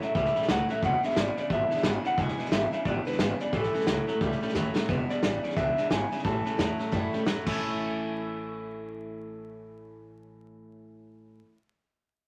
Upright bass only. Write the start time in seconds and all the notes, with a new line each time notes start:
0.02 muted upright bass stroke
0.15 C#2
0.36 muted upright bass stroke
0.49 C#2
0.69 muted upright bass stroke
0.83 E1
1.03 muted upright bass stroke
1.16 G#1
1.37 muted upright bass stroke
1.50 G#1
1.71 muted upright bass stroke
1.84 G#1
2.05 muted upright bass stroke
2.18 E1
2.39 muted upright bass stroke
2.52 G#1
2.73 muted upright bass stroke
2.85 G#1
3.06 muted upright bass stroke
3.19 G#1
3.40 muted upright bass stroke
3.53 A1
3.73 muted upright bass stroke
3.87 C#2
4.08 muted upright bass stroke
4.21 C#2
4.41 muted upright bass stroke
4.55 D#2
4.75 muted upright bass stroke
4.89 E1
5.09 muted upright bass stroke
5.22 A1
5.43 muted upright bass stroke
5.57 C#2
5.77 muted upright bass stroke
5.90 G#1
6.11 muted upright bass stroke
6.25 A1
6.45 muted upright bass stroke
6.58 E2
6.79 muted upright bass stroke
6.92 F#2
7.13 muted upright bass stroke
7.26 F#2
7.47 A1